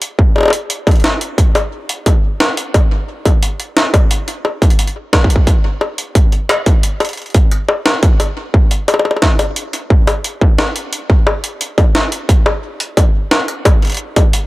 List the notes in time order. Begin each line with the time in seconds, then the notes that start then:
0.02 closed hi-hat
0.19 kick
0.36 high bongo
0.38 high bongo
0.41 high bongo
0.43 high bongo
0.46 high bongo
0.48 high bongo
0.50 closed hi-hat, high bongo
0.70 closed hi-hat
0.87 kick, closed hi-hat, high bongo
0.91 closed hi-hat
0.96 closed hi-hat
1.00 closed hi-hat
1.04 snare
1.21 closed hi-hat
1.38 kick, closed hi-hat
1.55 closed hi-hat, high bongo
1.89 closed hi-hat
2.06 kick, closed hi-hat, high bongo
2.40 snare
2.57 closed hi-hat
2.74 kick, closed hi-hat, high bongo
3.26 kick, closed hi-hat, high bongo
3.43 closed hi-hat
3.60 closed hi-hat
3.77 snare
3.94 kick, closed hi-hat, high bongo
4.11 closed hi-hat
4.28 closed hi-hat
4.45 high bongo
4.62 kick, closed hi-hat
4.70 closed hi-hat
4.79 closed hi-hat
4.87 closed hi-hat
5.13 kick, snare, high bongo
5.24 kick
5.30 closed hi-hat
5.36 kick
5.47 kick, closed hi-hat
5.81 high bongo
5.98 closed hi-hat
6.15 kick, closed hi-hat
6.32 closed hi-hat
6.49 snare, high bongo
6.66 kick, closed hi-hat
6.83 closed hi-hat
7.00 closed hi-hat, high bongo
7.05 closed hi-hat
7.09 closed hi-hat
7.13 closed hi-hat
7.17 closed hi-hat
7.22 closed hi-hat
7.26 closed hi-hat
7.30 closed hi-hat
7.34 kick, closed hi-hat
7.51 closed hi-hat
7.69 high bongo
7.86 snare
8.03 kick, closed hi-hat
8.20 closed hi-hat, high bongo
8.54 kick
8.71 closed hi-hat
8.88 closed hi-hat, high bongo
8.94 high bongo
8.99 high bongo
9.05 high bongo
9.11 high bongo
9.16 high bongo
9.22 kick, snare
9.39 closed hi-hat, high bongo
9.56 closed hi-hat
9.73 closed hi-hat
9.90 kick
10.07 closed hi-hat, high bongo
10.24 closed hi-hat
10.41 kick
10.58 snare, high bongo
10.76 closed hi-hat
10.93 closed hi-hat
11.10 kick
11.27 high bongo
11.44 closed hi-hat
11.61 closed hi-hat
11.78 kick, closed hi-hat, high bongo
11.95 snare
12.12 closed hi-hat
12.29 kick, closed hi-hat
12.46 high bongo
12.80 closed hi-hat
12.97 kick, closed hi-hat, high bongo
13.31 snare
13.48 closed hi-hat
13.65 kick, closed hi-hat, high bongo
13.82 closed hi-hat
13.85 closed hi-hat
13.87 closed hi-hat
13.90 closed hi-hat
13.92 closed hi-hat
13.94 closed hi-hat
13.97 closed hi-hat
14.16 kick, closed hi-hat, high bongo
14.33 closed hi-hat